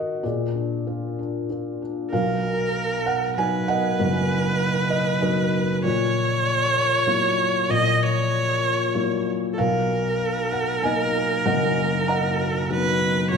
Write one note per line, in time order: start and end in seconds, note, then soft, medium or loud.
0.00 0.20 D#3 medium
0.00 0.26 F#4 soft
0.00 0.26 A#4 medium
0.00 0.26 D#5 medium
0.00 0.25 F#5 medium
0.23 2.08 A#2 medium
0.23 1.46 G#4 soft
0.23 1.45 D5 medium
0.55 1.17 D4 soft
0.87 1.49 F4 soft
1.19 1.81 D4 soft
1.50 2.11 F4 soft
1.82 2.12 D4 soft
2.11 3.96 B1 medium
2.11 3.96 B2 medium
2.11 3.32 A#4 medium
2.11 3.03 A#4 medium
2.11 3.02 F5 medium
3.06 3.38 F#5 medium
3.36 3.98 F#3 soft
3.36 3.98 B3 soft
3.36 3.98 D#4 medium
3.36 5.80 B4 medium
3.36 3.69 G#5 medium
3.68 4.88 A#4 medium
3.68 4.88 D#5 medium
3.68 4.95 F#5 loud
4.00 5.81 F#1 medium
4.00 5.81 F#2 medium
4.90 5.20 D#5 medium
5.21 5.82 F#3 soft
5.21 5.82 B3 soft
5.21 5.82 D#4 medium
5.21 5.80 F#4 soft
5.21 5.80 A#4 soft
5.21 5.65 D#5 medium
5.84 7.67 A#1 medium
5.84 7.66 A#2 medium
5.84 7.72 C#5 loud
7.07 7.68 F#3 soft
7.07 7.68 A#3 soft
7.07 7.68 E4 medium
7.69 9.54 A#1 medium
7.69 9.54 A#2 medium
7.69 8.04 D#5 loud
8.03 9.28 C#5 loud
8.95 9.56 F#3 soft
8.95 9.56 A#3 soft
8.95 9.57 E4 soft
9.53 9.61 A4 medium
9.58 11.42 B1 medium
9.58 11.42 B2 medium
9.58 12.71 A#4 medium
9.58 10.49 A#4 medium
9.58 10.17 F5 medium
10.52 10.84 F#5 medium
10.83 11.44 A#3 medium
10.83 11.44 B3 soft
10.83 11.44 D#4 medium
10.83 11.46 D#5 medium
10.83 11.41 G#5 medium
11.45 13.27 F#1 medium
11.45 13.27 F#2 medium
11.45 12.35 A#4 medium
11.45 12.08 D#5 medium
11.45 12.08 F#5 medium
12.08 12.97 D#5 medium
12.08 12.97 F#5 medium
12.08 12.96 A#5 medium
12.70 13.29 F#3 soft
12.70 13.29 B3 soft
12.70 13.30 D#4 medium
12.70 13.30 B4 loud
13.31 13.37 A#1 medium
13.31 13.37 A#2 medium
13.31 13.37 C#5 loud